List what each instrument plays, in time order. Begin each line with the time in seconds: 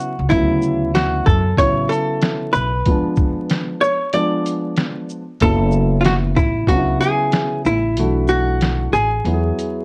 Already playing: grand piano C#3 F#3 B3 E4, hollow-body jazz guitar F#4
0.19 upright bass C#2
0.30 upright bass D2, grand piano C#3 F#3 B3, hollow-body jazz guitar E4, kick, closed hi-hat
0.34 grand piano E4
0.62 shaker
0.95 hollow-body jazz guitar F#4, snare, closed hi-hat
1.26 upright bass F#2, hollow-body jazz guitar A4, kick, shaker
1.57 upright bass A1, grand piano C#3 F#3 B3 E4, hollow-body jazz guitar C#5, kick, closed hi-hat
1.89 hollow-body jazz guitar A4, closed hi-hat, shaker
2.22 snare, closed hi-hat
2.53 upright bass B1, hollow-body jazz guitar B4, shaker
2.86 grand piano F3 G#3 B3 D4, kick, closed hi-hat
3.16 kick, shaker
3.49 snare, closed hi-hat
3.81 hollow-body jazz guitar C#5, shaker
4.13 grand piano F3 G#3 B3 D4, hollow-body jazz guitar D5, closed hi-hat
4.46 closed hi-hat, shaker
4.77 snare, closed hi-hat
5.09 shaker
5.40 upright bass F#1, grand piano C#3 F#3 B3 E4, hollow-body jazz guitar A4, kick, closed hi-hat
5.72 shaker
6.01 hollow-body jazz guitar F4, closed hi-hat
6.06 hollow-body jazz guitar F#4, snare
6.37 upright bass A1, hollow-body jazz guitar E4, kick, shaker
6.67 upright bass C#2, grand piano C#3 F#3 B3 D4, hollow-body jazz guitar F#4, kick, closed hi-hat
6.77 grand piano E4
7.01 hollow-body jazz guitar G#4, closed hi-hat, shaker
7.32 snare, closed hi-hat
7.65 upright bass A1, hollow-body jazz guitar E4, shaker
7.97 upright bass B1, grand piano E3 A3 D4 F#4, closed hi-hat
8.28 hollow-body jazz guitar F#4, shaker
8.61 snare, closed hi-hat
8.93 upright bass A1, hollow-body jazz guitar G#4, closed hi-hat, shaker
9.24 upright bass E2, grand piano F#3 B3 E4 F#4, closed hi-hat
9.33 grand piano G#4
9.59 closed hi-hat, shaker